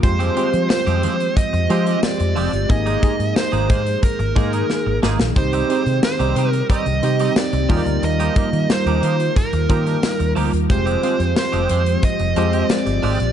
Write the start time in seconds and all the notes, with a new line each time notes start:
0.03 F2 F3 G#3 C4 F4 G4 C5, muted clean electric guitar stroke, kick, closed hi-hat
0.19 F3 G#3 C4 G4, closed hi-hat
0.36 F3 G#3 C4 F4 G4 C5, closed hi-hat
0.53 F3, muted clean electric guitar stroke, closed hi-hat
0.70 C5, muted clean electric guitar stroke, snare, tambourine
0.86 F2 F3 G#3 C4 G4, closed hi-hat
1.03 F3 G#3 C4 G4, closed hi-hat
1.20 muted clean electric guitar stroke, closed hi-hat
1.37 D#5, muted clean electric guitar stroke, kick, closed hi-hat
1.53 F2, muted clean electric guitar stroke, closed hi-hat
1.69 F3 G#3 C4 F4 G4 C5, closed hi-hat
1.86 F3 G#3 C4 G4, closed hi-hat
2.03 D5, muted clean electric guitar stroke, snare, tambourine
2.20 F2, muted clean electric guitar stroke, closed hi-hat
2.36 F1 F3 G#3 C4 G4, open hi-hat
2.53 G1, muted clean electric guitar stroke, closed hi-hat
2.69 G#1 D#3 A#3 D#4 G#4 D#5, muted clean electric guitar stroke, kick, closed hi-hat
2.86 G#3 A#3 D#4 G#4, closed hi-hat
3.02 G#3 A#3 D#4 G#4, kick, closed hi-hat
3.19 G#2, muted clean electric guitar stroke, closed hi-hat
3.36 C5, muted clean electric guitar stroke, snare, tambourine
3.52 G#1 G#3 A#3 D#4 G#4, closed hi-hat
3.69 G#2 G#3 A#3 D#4 G#4, kick, closed hi-hat
3.86 muted clean electric guitar stroke, closed hi-hat
4.02 A#4, muted clean electric guitar stroke, kick, closed hi-hat
4.19 G#1, muted clean electric guitar stroke, closed hi-hat
4.36 G#2 G#3 A#3 D#4 G#4, kick, closed hi-hat
4.53 G#3 A#3 D#4 G#4, closed hi-hat
4.70 muted clean electric guitar stroke, snare
4.86 G#1, muted clean electric guitar stroke
5.03 G#1 G#3 A#3 D#4 G#4, snare
5.20 A#1, muted clean electric guitar stroke, snare
5.36 C2 G3 C4 D#4 G4 C5, muted clean electric guitar stroke, kick, closed hi-hat
5.53 G3 C4 D#4 G4, closed hi-hat
5.69 G3 C4 D#4 G4, closed hi-hat
5.86 C3, muted clean electric guitar stroke, closed hi-hat
6.03 C5, muted clean electric guitar stroke, snare, tambourine
6.19 C2 G3 C4 D#4 G4, closed hi-hat
6.36 C3 G3 C4 D#4 G4, closed hi-hat
6.51 A#4, muted clean electric guitar stroke, closed hi-hat
6.70 G3 C4 D#4 G4 D#5, kick, closed hi-hat
6.86 C2, muted clean electric guitar stroke, closed hi-hat
7.03 C3 C4 D#4 G4, muted clean electric guitar stroke, closed hi-hat
7.19 G3 C4 D#4 G4, closed hi-hat
7.36 D5, muted clean electric guitar stroke, snare, tambourine
7.53 C2, muted clean electric guitar stroke, closed hi-hat
7.69 D#2 D#3 F3 G3 A#3 D#4 F4 G4 G#4, kick, open hi-hat
7.77 A#4
7.86 D2, muted clean electric guitar stroke, closed hi-hat
8.03 D#2 D#5, muted clean electric guitar stroke, closed hi-hat
8.20 F3 A#3 D#4 G4, closed hi-hat
8.36 F3 G3 A#3 D#4 F4 G4 A#4, kick, closed hi-hat
8.53 D#3, muted clean electric guitar stroke, closed hi-hat
8.70 C5, muted clean electric guitar stroke, snare, tambourine
8.86 D#2 F3 A#3 D#4 G4, closed hi-hat
9.03 D#3 F3 A#3 D#4 G4, closed hi-hat
9.20 muted clean electric guitar stroke, closed hi-hat
9.36 A#4, muted clean electric guitar stroke, kick, closed hi-hat
9.53 D#2, muted clean electric guitar stroke, closed hi-hat
9.69 D#3 F3 G3 A#3 D#4 F4 G4 A#4, kick, closed hi-hat
9.86 F3 A#3 D#4 G4, closed hi-hat
10.03 muted clean electric guitar stroke, snare, tambourine
10.20 D#2, muted clean electric guitar stroke, closed hi-hat
10.36 D2 F3 A#3 D#4 G4, open hi-hat
10.53 D#2, muted clean electric guitar stroke, closed hi-hat
10.69 F1 F3 G#3 C4 F4 G4 C5, muted clean electric guitar stroke, kick, closed hi-hat
10.86 F3 G#3 C4 G4, closed hi-hat
11.03 F3 G#3 C4 F4 G4 C5, closed hi-hat
11.19 F2, muted clean electric guitar stroke, closed hi-hat
11.36 C5, muted clean electric guitar stroke, snare, tambourine
11.52 F1 F3 G#3 C4 G4, closed hi-hat
11.69 F2 F3 G#3 C4 G4, closed hi-hat
11.86 muted clean electric guitar stroke, closed hi-hat
12.03 D#5, muted clean electric guitar stroke, kick, closed hi-hat
12.19 F1, muted clean electric guitar stroke, closed hi-hat
12.36 F2 F3 G#3 C4 F4 G4 C5, closed hi-hat
12.53 F3 G#3 C4 G4, closed hi-hat
12.69 D5, muted clean electric guitar stroke, snare, tambourine
12.86 G1, muted clean electric guitar stroke, closed hi-hat
13.03 G#1 F3 G#3 C4 G4, open hi-hat
13.20 A#1, muted clean electric guitar stroke, closed hi-hat